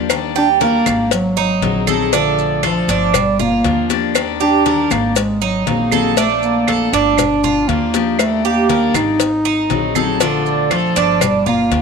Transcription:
Already playing: upright bass D#2
0.09 steel-string acoustic guitar D#3 G3 D4 G4, cowbell, high conga, claves, maracas
0.35 bass clarinet D4, cuban tres G4, high conga, maracas
0.60 steel-string acoustic guitar D#3 G3 D4 G4, bass clarinet A#3, cuban tres A#4, cowbell, high conga, maracas
0.86 upright bass G#1, cowbell, high conga, claves, maracas
1.11 bass clarinet F#3, muted steel-string acoustic guitar stroke, cowbell, high conga, maracas
1.37 bass clarinet F#3, cuban tres D#4, high conga, maracas
1.62 upright bass A#1, steel-string acoustic guitar F#3 C4 D#4 G#4, cowbell, high conga, maracas
1.87 steel-string acoustic guitar F#3 C4 D#4 G#4, cuban tres A4, high conga, claves, maracas
2.13 bass clarinet D3, steel-string acoustic guitar F3 A3 D4 F4, cuban tres D4, cowbell, high conga, maracas
2.38 high conga, maracas
2.63 steel-string acoustic guitar F3 A3 D4 F4, bass clarinet F3, cuban tres A4, cowbell, high conga, claves, maracas
2.88 upright bass G1, cuban tres D4, cowbell, maracas
3.14 bass clarinet G3, muted steel-string acoustic guitar stroke, cowbell, high conga, low conga, claves, maracas
3.39 bass clarinet A#3, cuban tres F4, high conga, low conga, maracas
3.64 upright bass D#2, steel-string acoustic guitar F3 A#3 D4 G4, cowbell, high conga, maracas
3.90 steel-string acoustic guitar F3 A#3 D4 G4, cowbell, high conga, maracas
4.15 steel-string acoustic guitar D#3 G3 D4 G4, cowbell, high conga, claves, maracas
4.40 bass clarinet D4, cuban tres G4, high conga, maracas
4.65 steel-string acoustic guitar D#3 G3 D4 G4, cuban tres A#4, cowbell, high conga, maracas
4.90 upright bass G#1, bass clarinet A#3, cowbell, high conga, claves, maracas
5.16 bass clarinet G#3, muted steel-string acoustic guitar stroke, cowbell, high conga, maracas
5.42 bass clarinet F#3, cuban tres D#4, high conga, maracas
5.66 upright bass A#1, steel-string acoustic guitar F#3 C4 D#4 G#4, bass clarinet A#3, cowbell, high conga, maracas
5.92 steel-string acoustic guitar F#3 C4 D#4 G#4, cuban tres A4, high conga, claves, maracas
6.17 steel-string acoustic guitar F3 A3 D4 F4, bass clarinet A3, cuban tres D4, cowbell, maracas
6.43 bass clarinet A#3, high conga, maracas
6.67 steel-string acoustic guitar F3 A3 D4 F4, cuban tres A4, cowbell, high conga, claves, maracas
6.93 upright bass G1, bass clarinet D4, cuban tres D4, cowbell, maracas
7.18 muted steel-string acoustic guitar stroke, cowbell, high conga, low conga, claves, maracas
7.44 cuban tres F4, high conga, low conga, maracas
7.68 upright bass D#2, steel-string acoustic guitar F3 A#3 D4 G4, bass clarinet A#3, cowbell, high conga, maracas
7.94 steel-string acoustic guitar F3 A#3 D4 G4, cowbell, high conga, maracas
8.19 steel-string acoustic guitar D#3 G3 D4 G4, bass clarinet A3, cowbell, high conga, claves, maracas
8.44 bass clarinet A#3, cuban tres G4, high conga, maracas
8.69 steel-string acoustic guitar D#3 G3 D4 G4, cuban tres A#4, cowbell, high conga, maracas
8.94 upright bass G#1, bass clarinet D#4, cowbell, high conga, claves, maracas
9.20 muted steel-string acoustic guitar stroke, cowbell, high conga, maracas
9.45 cuban tres D#4, high conga, maracas
9.70 upright bass A#1, steel-string acoustic guitar F#3 C4 D#4 G#4, cowbell, high conga, maracas
9.95 steel-string acoustic guitar F#3 C4 D#4 G#4, cuban tres A4, high conga, claves, maracas
10.20 bass clarinet D3, steel-string acoustic guitar F3 A3 D4 F4, cuban tres D4, cowbell, high conga, maracas
10.46 high conga, maracas
10.71 steel-string acoustic guitar F3 A3 D4 F4, bass clarinet F3, cuban tres A4, cowbell, high conga, claves, maracas
10.95 upright bass G1, cuban tres D4, cowbell, maracas
11.21 bass clarinet G3, muted steel-string acoustic guitar stroke, cowbell, high conga, low conga, claves, maracas
11.46 bass clarinet A#3, cuban tres F4, high conga, low conga, maracas
11.71 upright bass D#2, steel-string acoustic guitar F3 A#3 D4 G4, cowbell, high conga, maracas

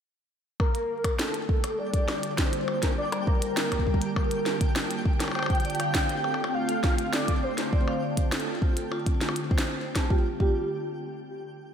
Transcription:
0.60 ambient pad D3 G3 A#3 F4 A5, synth texture G4 G5, soft synth lead A#4, kick, percussion blips
0.75 closed hi-hat
1.04 kick, closed hi-hat, percussion blips
1.19 soft synth lead A4, snare
1.34 closed hi-hat
1.49 kick
1.64 closed hi-hat, percussion blips
1.78 soft synth lead D5
1.94 kick, closed hi-hat
2.08 snare, percussion blips
2.23 closed hi-hat
2.38 soft synth lead C5, kick, snare
2.53 closed hi-hat
2.68 percussion blips
2.82 soft synth lead A#4, kick, snare, closed hi-hat
2.97 soft synth lead D5
3.12 closed hi-hat, percussion blips
3.27 soft synth lead A#4, kick
3.42 closed hi-hat
3.57 snare
3.72 kick, closed hi-hat, percussion blips
3.79 kick
3.87 kick
3.94 kick
4.02 closed hi-hat
4.16 kick, percussion blips
4.31 closed hi-hat
4.46 snare
4.61 kick, closed hi-hat
4.76 snare, percussion blips
4.91 closed hi-hat
5.05 kick
5.20 snare, closed hi-hat, percussion blips
5.24 percussion blips
5.28 percussion blips
5.32 vibraphone C5, soft synth lead G5, percussion blips
5.35 ambient pad A3 C4, percussion blips
5.39 percussion blips
5.43 percussion blips
5.46 kick, closed hi-hat, percussion blips
5.55 closed hi-hat
5.60 closed hi-hat
5.65 vibraphone D5, closed hi-hat
5.70 closed hi-hat
5.75 closed hi-hat
5.80 vibraphone F5, closed hi-hat, percussion blips
5.95 vibraphone D5, kick, snare
6.09 vibraphone C5, closed hi-hat
6.24 vibraphone A4, percussion blips
6.34 percussion blips
6.44 percussion blips
6.54 vibraphone F4, soft synth lead F5
6.69 vibraphone A4, closed hi-hat
6.84 vibraphone F4, kick, snare, percussion blips
6.99 closed hi-hat
7.13 vibraphone A4, soft synth lead D5, snare
7.28 kick, closed hi-hat
7.43 vibraphone C5, soft synth lead C5
7.58 snare, closed hi-hat
7.73 vibraphone D5, kick
7.88 vibraphone F5, percussion blips
8.02 vibraphone D5
8.17 vibraphone C5, kick, closed hi-hat
8.32 vibraphone A4, snare, percussion blips
8.40 closed hi-hat
8.62 vibraphone F4, kick
8.77 vibraphone A4, closed hi-hat
8.92 vibraphone F4, percussion blips
9.06 kick, closed hi-hat
9.21 vibraphone F4, snare
9.29 percussion blips
9.36 closed hi-hat
9.51 vibraphone C5, kick
9.58 snare
9.81 vibraphone C5
9.96 vibraphone A5, kick, snare, closed hi-hat, percussion blips
10.10 vibraphone F4, soft synth lead G4, kick
10.40 vibraphone F4, soft synth lead G4, kick

